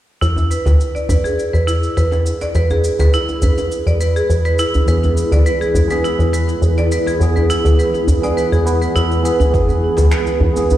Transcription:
0.21 fm bass E2, marimba E4, ambient pad E4, shaker
0.36 djembe tone, shaker
0.51 marimba B4, shaker
0.66 fm bass D2, djembe slap, shaker
0.81 ambient pad G#4 B4, shaker
0.95 marimba D5, djembe tone, shaker
1.09 fm bass E2, marimba B4, djembe bass, shaker
1.24 marimba G#4, djembe tone, shaker
1.39 shaker
1.53 fm bass E2, marimba B4, shaker
1.67 marimba E4, shaker
1.83 shaker
1.97 fm bass E2, marimba B4, shaker
2.12 djembe slap, shaker
2.26 shaker
2.41 marimba D5, djembe slap, shaker
2.55 fm bass E2, marimba B4, shaker
2.70 marimba G#4, djembe tone, shaker
2.84 shaker
2.99 fm bass D2, marimba B4, djembe slap, shaker
3.14 marimba E4, shaker
3.29 djembe tone, shaker
3.42 fm bass E2, marimba B4, djembe bass, shaker
3.58 djembe slap, djembe tone, shaker
3.72 shaker
3.87 fm bass E2, marimba D5, shaker
4.01 marimba B4, shaker
4.16 marimba G#4, shaker
4.30 fm bass E2, shaker
4.45 marimba B4, shaker
4.59 marimba E4, shaker
4.74 djembe bass, shaker
4.86 fm bass E2, tine electric piano E3 B3, marimba B4, shaker
4.90 tine electric piano G#4
5.04 djembe tone, shaker
5.17 shaker
5.32 fm bass D2, marimba D5, djembe slap, shaker
5.46 marimba B4, shaker
5.61 marimba G#4, djembe tone, shaker
5.74 fm bass E2, djembe bass, shaker
5.88 tine electric piano E3 B3 G#4, marimba B4, djembe tone, shaker
6.04 marimba E4, shaker
6.19 fm bass E2, shaker
6.33 marimba B4, shaker
6.49 shaker
6.62 fm bass E2, shaker
6.78 marimba D5, djembe slap, shaker
6.92 marimba B4, shaker
7.06 marimba G#4, djembe slap, shaker
7.19 fm bass E2, tine electric piano E3 B3 G#4, shaker
7.36 marimba B4, djembe tone, shaker
7.50 marimba E4, djembe tone, shaker
7.65 fm bass D2, djembe slap, shaker
7.79 marimba B4, shaker
7.94 djembe tone, shaker
8.07 fm bass E2, djembe bass, shaker
8.21 tine electric piano E3 B3 G#4, marimba D5, djembe slap, djembe tone, shaker
8.37 marimba B4, shaker
8.52 fm bass E2, marimba G#4, shaker
8.64 tine electric piano E3 B3 B4, shaker
8.82 marimba B4, shaker
8.96 fm bass E2, marimba E4, shaker
9.11 shaker
9.23 tine electric piano E3 B3 G#4, marimba B4, shaker
9.40 djembe bass, shaker
9.51 fm bass E2, tine electric piano E3 B3, kick, shaker
9.55 tine electric piano G#4
9.68 djembe tone, shaker
9.97 fm bass D2, djembe slap, shaker
10.12 finger snap, shaker
10.27 djembe tone, shaker
10.40 fm bass E2, djembe bass
10.54 tine electric piano E3 B3 G#4, djembe tone, shaker
10.70 djembe bass, shaker

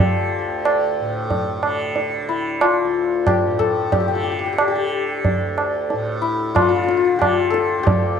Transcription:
Already playing: tanpura D2 A2 D3, santur F4 A4
0.00 santur G4
0.39 tanpura D2
0.65 tabla na
1.00 tanpura A2
1.30 tabla tin, tabla ge
1.62 tanpura D3, tabla na
1.96 tabla tin
2.22 tanpura D3
2.29 santur E4
2.61 santur F4, tabla na
2.84 tanpura D2
3.27 santur G4, tabla na, tabla ge
3.46 tanpura A2
3.59 santur A4, tabla ge
3.92 santur G4, tabla tin, tabla ge
4.00 santur G4
4.08 tanpura D3, santur G4
4.15 santur G4
4.24 santur G4
4.32 santur G4
4.39 santur G4
4.46 santur G4
4.53 santur G4
4.58 santur G4, tabla na
4.68 tanpura D3, santur G4
4.75 santur G4
5.25 tabla tin, tabla ge
5.31 tanpura D2
5.58 tabla na
5.90 tanpura A2, tabla tin
6.22 santur E4
6.54 tanpura D3, santur F4, tabla na, tabla ge
6.62 santur F4
6.69 santur F4
6.76 santur F4
6.83 santur F4
6.89 santur F4, tabla te
6.97 santur F4
7.05 santur F4
7.16 tanpura D3, santur G4
7.22 tabla na, tabla ge
7.50 santur A4, tabla te
7.78 tanpura D2
7.83 santur G4, tabla tin, tabla ge

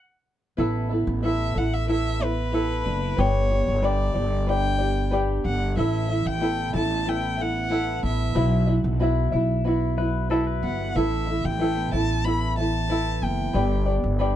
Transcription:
0.57 upright bass A1, clean electric guitar B3, ukulele E4 A4 B4 E5
0.89 clean electric guitar B3, ukulele E4 A4 E5
1.07 upright bass A1
1.23 clean electric guitar E4, ukulele E4 A4 B4 E5, violin E5
1.54 upright bass A1, ukulele E4 A4 E5, clean electric guitar A4, violin F#5
1.74 violin E5
1.87 clean electric guitar E4, ukulele E4 A4 B4 E5, violin E5
2.19 clean electric guitar B3, ukulele E4 A4 E5, violin B4
2.52 ukulele E4 A4 B4 E5, clean electric guitar G4
2.68 clean electric guitar A4
2.85 upright bass F#1, clean electric guitar D4
3.01 clean electric guitar E4
3.17 upright bass G1, clean electric guitar B3, ukulele D4 G4 B4, violin C#5
3.50 clean electric guitar B3, ukulele D4 G4
3.67 upright bass G1
3.82 clean electric guitar D4, ukulele D4 G4 B4 D5, violin D5
4.14 upright bass G1, ukulele D4 G4 D5, clean electric guitar G4
4.47 clean electric guitar D4, ukulele D4 G4 B4 D5, violin G5
4.78 clean electric guitar B3, ukulele D4 G4 D5
5.11 ukulele D4 G4 B4 D5, clean electric guitar G4
5.44 upright bass G1, clean electric guitar D4, violin F#5
5.76 upright bass A1, clean electric guitar E3, ukulele E4 A4 B4 E5, violin E5
6.08 clean electric guitar E3, ukulele E4 A4 E5
6.25 upright bass A1, violin G5
6.40 clean electric guitar B3, ukulele E4 A4 B4 E5
6.73 upright bass A1, clean electric guitar E4, ukulele E4 A4 E5, violin A5
7.05 clean electric guitar B3, ukulele E4 A4 B4 E5, violin G5
7.37 clean electric guitar E3, ukulele E4 A4 E5
7.41 violin F#5
7.69 ukulele E4 A4 B4 E5, clean electric guitar E4
8.03 upright bass A1, clean electric guitar B3, violin E5
8.34 upright bass B1, clean electric guitar F#3, ukulele E4 F#4 B4 E5
8.67 clean electric guitar F#3, ukulele E4 F#4 E5
8.84 upright bass B1
9.00 clean electric guitar B3, ukulele E4 F#4 B4 E5
9.32 upright bass B1, clean electric guitar E4, ukulele E4 F#4 E5
9.64 clean electric guitar B3, ukulele E4 F#4 B4 E5
9.97 clean electric guitar F#3, ukulele E4 F#4 E5, pedal steel guitar B4
10.30 clean electric guitar E4, ukulele E4 F#4 B4 E5, pedal steel guitar A4
10.47 pedal steel guitar B4
10.63 upright bass G1, clean electric guitar B3, violin F#5
10.95 upright bass A1, clean electric guitar E3, ukulele E4 A4 B4 E5, violin E5
11.27 clean electric guitar E3, ukulele E4 A4 E5
11.44 upright bass A1, violin G5
11.59 clean electric guitar A3, ukulele E4 A4 B4 E5
11.76 clean electric guitar B3
11.92 upright bass A1, clean electric guitar E4, ukulele E4 A4 E5, violin A5
12.25 clean electric guitar B3, ukulele E4 A4 B4 E5, violin B5
12.57 clean electric guitar E3, ukulele E4 A4 E5, violin A5
12.89 clean electric guitar E4, ukulele E4 A4 B4 E5
13.22 upright bass F#1, clean electric guitar B3, violin G5
13.53 upright bass G1, clean electric guitar B3, ukulele D4 G4 B4 D5
13.86 clean electric guitar B3, ukulele D4 G4 D5
14.04 upright bass G1
14.19 ukulele D4 G4 B4 D5, clean electric guitar D4

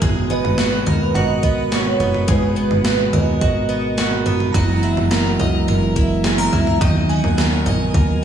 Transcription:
Already playing: tonewheel organ G#3, twelve-string acoustic guitar D#5
0.02 analog synth bass G#1, tonewheel organ B2 B3 F#4, twelve-string acoustic guitar G#3, kick, floor tom
0.30 twelve-string acoustic guitar B3, soft synth lead B4, synth bell D#5
0.44 analog synth bass G#1, floor tom
0.58 twelve-string acoustic guitar F#4, snare
0.86 analog synth bass D#2, twelve-string acoustic guitar A#4, floor tom
1.14 analog synth bass G#1, twelve-string acoustic guitar F#4, soft synth lead D#5, synth bell F#5, floor tom
1.43 twelve-string acoustic guitar B3, kick
1.72 twelve-string acoustic guitar F#4, soft synth lead C#5, snare
2.00 analog synth bass F#1, twelve-string acoustic guitar B3, floor tom
2.15 floor tom
2.28 analog synth bass G#1, twelve-string acoustic guitar G#3, soft synth lead B4, kick, floor tom
2.56 twelve-string acoustic guitar B3
2.71 analog synth bass G#1, floor tom
2.84 twelve-string acoustic guitar F#4, snare
3.13 analog synth bass D#2, twelve-string acoustic guitar A#4, floor tom
3.17 soft synth lead D#5
3.41 analog synth bass G#1, twelve-string acoustic guitar F#4, kick, floor tom
3.69 twelve-string acoustic guitar B3
3.97 twelve-string acoustic guitar F#4, snare
4.26 twelve-string acoustic guitar B3, floor tom
4.40 floor tom
4.53 analog synth bass F#1, tonewheel organ E3 G#3 E4, twelve-string acoustic guitar F#3 D#5, synth bell A#5, kick, floor tom
4.83 twelve-string acoustic guitar E4
4.97 analog synth bass F#1, floor tom
5.11 twelve-string acoustic guitar A#4, snare
5.39 analog synth bass C#2, twelve-string acoustic guitar D#5, floor tom
5.68 analog synth bass F#1, twelve-string acoustic guitar A#4, floor tom
5.96 twelve-string acoustic guitar E4, kick
6.24 twelve-string acoustic guitar G#4, snare
6.38 twelve-string acoustic guitar A#4
6.53 analog synth bass C#2, twelve-string acoustic guitar E4, floor tom
6.67 floor tom
6.81 analog synth bass D#2, tonewheel organ C#3 F#3 D#4, twelve-string acoustic guitar D#3 D#5, kick, floor tom
7.09 twelve-string acoustic guitar F#4, synth bell G#5
7.24 analog synth bass D#2, floor tom
7.38 twelve-string acoustic guitar A#4, snare
7.66 analog synth bass A#1, twelve-string acoustic guitar D#5, floor tom
7.94 analog synth bass D#2, twelve-string acoustic guitar A#4, kick, floor tom

